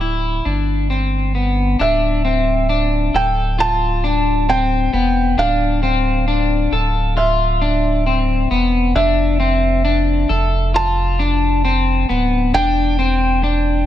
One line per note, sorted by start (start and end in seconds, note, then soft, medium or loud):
0.00 0.41 D1 medium
0.00 0.45 E4 medium
0.00 0.86 D5 loud
0.45 1.76 G1 medium
0.45 0.90 D4 medium
0.90 1.34 C4 medium
1.35 1.79 B3 medium
1.79 3.10 D1 medium
1.79 2.24 D4 loud
1.79 3.19 E5 medium
2.25 2.69 C4 medium
2.69 3.14 D4 medium
3.14 4.89 D1 medium
3.14 3.58 A4 medium
3.14 3.61 G5 loud
3.59 4.03 F4 medium
3.59 4.52 A5 loud
4.04 4.48 D4 medium
4.49 4.93 C4 medium
4.49 5.41 G5 loud
4.93 5.36 E1 medium
4.93 5.38 B3 medium
5.38 6.68 D1 loud
5.38 5.82 D4 loud
5.38 7.23 F5 loud
5.83 6.27 C4 medium
6.28 6.72 D4 medium
6.72 8.47 D1 loud
6.72 7.16 A4 medium
7.17 7.62 F4 medium
7.17 8.48 E5 medium
7.61 8.06 D4 medium
8.06 8.51 C4 medium
8.51 8.94 E1 medium
8.51 8.95 B3 medium
8.95 10.26 F1 loud
8.95 9.39 D4 loud
8.95 10.80 E5 medium
9.40 9.84 C4 medium
9.85 10.30 D4 medium
10.29 12.05 F1 loud
10.29 10.74 A4 medium
10.74 11.19 F4 medium
10.74 12.06 A5 loud
11.19 11.64 D4 medium
11.65 12.09 C4 medium
12.09 12.52 D1 medium
12.09 12.54 B3 medium
12.54 13.84 E1 loud
12.54 12.98 D4 loud
12.54 13.86 G5 loud
12.99 13.43 C4 medium
13.43 13.86 D4 medium